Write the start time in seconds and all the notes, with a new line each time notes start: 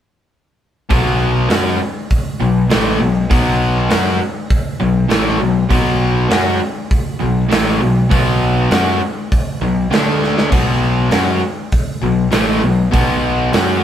0.89 B1 B2 F#3 B3, kick, open hi-hat
1.49 F#2 F#3 C#4 F#4, snare, open hi-hat
2.10 kick, open hi-hat
2.40 B1 B2 F#3
2.70 A1 A2 E3 A3, snare, open hi-hat
3.01 B1 B2 F#3
3.30 B1 B2 F#3 B3, kick, open hi-hat
3.89 F#2 F#3 C#4 F#4, snare, open hi-hat
4.50 kick, open hi-hat
4.80 B1 B2 F#3
5.09 A1 A2 E3 A3, snare, open hi-hat
5.39 B1 B2 F#3
5.70 B1 B2 F#3 B3, kick, open hi-hat
6.29 F#2 F#3 C#4 F#4, snare, open hi-hat
6.91 kick, open hi-hat
7.20 B1 B2 F#3
7.50 A1 A2 E3 A3, snare, open hi-hat
7.81 B1 B2 F#3
8.10 B1 B2 F#3 B3, kick, open hi-hat
8.71 F#2 F#3 C#4 F#4, snare, open hi-hat
9.32 kick, open hi-hat
9.61 B1 B2 F#3
9.90 D2 D3 A3 D4, snare, open hi-hat
10.24 snare
10.38 snare
10.52 B1 B2 F#3 B3, kick, open hi-hat, splash
11.11 F#2 F#3 C#4 F#4, snare, open hi-hat
11.72 kick, open hi-hat
12.02 B1 B2 F#3
12.31 A1 A2 E3 A3, snare, open hi-hat
12.60 B1 B2 F#3
12.91 B1 B2 F#3 B3, kick, open hi-hat
13.53 F#2 F#3 C#4 F#4, snare, open hi-hat